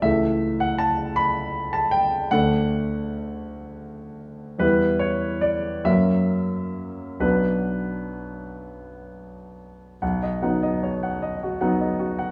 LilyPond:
<<
  \new Staff \with { instrumentName = "Grand piano" } { \time 6/8 \key b \minor \tempo 4. = 51 e''8. fis''16 a''8 b''8. a''16 g''8 | fis''2. | b'8 cis''8 d''8 e''4. | b'2~ b'8 r8 |
\key b \major fis''16 dis''16 fis''16 dis''16 cis''16 fis''16 dis''16 fis'16 fis''16 dis''16 fis'16 fis''16 | }
  \new Staff \with { instrumentName = "Grand piano" } { \time 6/8 \key b \minor <cis, e a a'>2. | <d, a d' a'>2. | <e, g b e'>4. <fis, fis ais cis'>4. | <b,, fis b d'>2. |
\key b \major b,,8 <fis b dis'>4. <fis b dis'>4 | }
>>